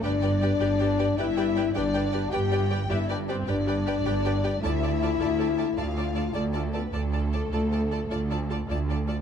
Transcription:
<<
  \new Staff \with { instrumentName = "Violin section" } { \time 12/8 \key g \mixolydian \tempo 4. = 104 <d'' g''>8 <d'' g''>8 <d'' g''>8 <d'' g''>8 <d'' g''>8 <d'' g''>8 <d'' g''>8 <d'' g''>8 <d'' g''>8 <d'' g''>8 <d'' g''>8 <d'' g''>8 | <d'' g''>8 <d'' g''>8 <d'' g''>8 <d'' g''>8 <d'' g''>8 <d'' g''>8 <d'' g''>8 <d'' g''>8 <d'' g''>8 <d'' g''>8 <d'' g''>8 <d'' g''>8 | <d'' a''>8 <d'' a''>8 <d'' a''>8 <d'' a''>8 <d'' a''>8 <d'' a''>8 <d'' a''>8 <d'' a''>8 <d'' a''>8 <d'' a''>8 <d'' a''>8 <d'' a''>8 | <d'' a''>8 <d'' a''>8 <d'' a''>8 <d'' a''>8 <d'' a''>8 <d'' a''>8 <d'' a''>8 <d'' a''>8 <d'' a''>8 <d'' a''>8 <d'' a''>8 <d'' a''>8 | }
  \new Staff \with { instrumentName = "Violin section" } { \time 12/8 \key g \mixolydian d''2. e''4. d''4. | g''4. e''8 d''8 c''8 d''2. | e''2. f''4. d''8 a'8 b'8 | a'1~ a'8 r4. | }
  \new Staff \with { instrumentName = "Viola section" } { \time 12/8 \key g \mixolydian <g' b'>8 <g' b'>8 <g' b'>8 <g' b'>8 <g' b'>8 <g' b'>8 <g' b'>8 <g' b'>8 <g' b'>8 <g' b'>8 <g' b'>8 <g' b'>8 | <g' b'>8 <g' b'>8 <g' b'>8 <g' b'>8 <g' b'>8 <g' b'>8 <g' b'>8 <g' b'>8 <g' b'>8 <g' b'>8 <g' b'>8 <g' b'>8 | <f' a'>8 <f' a'>8 <f' a'>8 <f' a'>8 <f' a'>8 <f' a'>8 <f' a'>8 <f' a'>8 <f' a'>8 <f' a'>8 <f' a'>8 <f' a'>8 | <f' a'>8 <f' a'>8 <f' a'>8 <f' a'>8 <f' a'>8 <f' a'>8 <f' a'>8 <f' a'>8 <f' a'>8 <f' a'>8 <f' a'>8 <f' a'>8 | }
  \new Staff \with { instrumentName = "French horn section" } { \time 12/8 \key g \mixolydian d'2. e'4. d'4. | g'4. e'8 d'8 c'8 d'2. | e'2. f'4. d'8 a8 b8 | a1~ a8 r4. | }
  \new Staff \with { instrumentName = "Cello section" } { \clef bass \time 12/8 \key g \mixolydian g,4. g,4. g,4. g,4. | g,4. g,4. g,4. g,4. | d,4. d,4. d,4. d,4. | d,4. d,4. d,4. d,4. | }
  \new Staff \with { instrumentName = "Double bass section" } { \clef bass \time 12/8 \key g \mixolydian g,,4. g,,4. g,,4. g,,4. | g,,4. g,,4. g,,4. g,,4. | d,4. d,4. d,4. d,4. | d,4. d,4. d,4. d,4. | }
>>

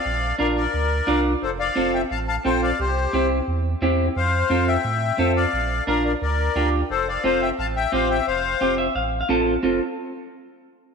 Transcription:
<<
  \new Staff \with { instrumentName = "Accordion" } { \time 4/4 \key f \major \tempo 4 = 175 <d'' f''>4 <bes' d''>8 <bes' d''>2 r8 | <a' c''>8 <d'' f''>4 <e'' g''>8 <f'' a''>8 <f'' a''>8 <c'' g''>8 <d'' f''>8 | <g' c''>4. r2 r8 | <c'' f''>4. <e'' g''>2 <d'' f''>8~ |
<d'' f''>4 <bes' d''>8 <bes' d''>8 <bes' d''>4. r8 | <a' c''>8 <d'' f''>8 <c'' f''>8 <e'' g''>8 <f'' a''>8 <e'' g''>8 <c'' f''>8 <e'' g''>8 | <c'' f''>4. r2 r8 | r1 | }
  \new Staff \with { instrumentName = "Clean electric guitar" } { \time 4/4 \key f \major << { r2. d''4 | r1 | r1 | r1 |
r1 | r1 | r4. e''8 f''8. f''16 a''4 | r1 | } \\ { r4 <d' f' bes'>8 r4. <d' f' bes'>8 r8 | r4 <c' f' a'>8 r4. <c' f' a'>8 r8 | r4 <c' e' g'>8 r4. <c' e' g'>8 r8 | r4 <c' f' a'>8 r4. <c' f' a'>8 r8 |
r4 <d' f' bes'>8 r4. <d' f' g'>8 r8 | r4 <c' f' a'>8 r4. <c' f' g'>8 r8 | r4 <c' f' g'>8 r4. <c' f' a'>8 r8 | <c' f' a'>8 r2. r8 | } >> }
  \new Staff \with { instrumentName = "Sub bass" } { \clef bass \time 4/4 \key f \major bes,,4 bes,,4 d,4 c,4 | f,,4 f,,4 a,,4 bes,,4 | c,4 c,4 e,4 e,4 | f,4 f,4 a,4 f,4 |
bes,,4 bes,,4 d,4 d,4 | f,,4 f,,4 a,,4 a,,4 | f,,4 f,,4 a,,4 a,,4 | f,,8 r2. r8 | }
>>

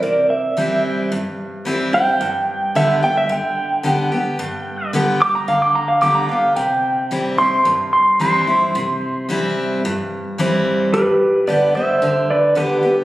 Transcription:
<<
  \new Staff \with { instrumentName = "Pedal steel guitar" } { \time 4/4 \key g \major \tempo 4 = 110 <bes' d''>8 e''4 r2 g''8~ | g''4 e''8 g''16 e''16 g''2~ | g''4 r8 d'''16 bes''16 f''16 d'''16 bes''16 f''16 d'''16 bes''16 f''8 | g''4 r8 c'''4 c'''8 c'''4~ |
c'''4 r2. | <g' b'>4 <b' d''>8 <c'' e''>4 <b' d''>8 <g' b'>8. r16 | }
  \new Staff \with { instrumentName = "Steel-string acoustic guitar" } { \time 4/4 \key g \major << { r4 <e g c' e'>4 r4 <e g c' e'>8 <c' e'>8 | r4 <d g b g'>8 <b g'>8 r4 <d g b g'>8 <b g'>8 | r4 <d g b g'>8 g'8 r4 <d g b g'>8 <b g'>8 | r4 <e g c' e'>8 <c' e'>8 r4 <e g c' e'>8 <c' e'>8 |
r4 <e g c' e'>4 r4 <e g c' e'>4 | r4 <d g b g'>8 <b g'>8 r4 <d g b g'>8 <b g'>8 | } \\ { c2 g,2 | g,2 d2 | g,2 d2 | c2 g,2 |
c2 g,2 | g,2 d2 | } >> }
>>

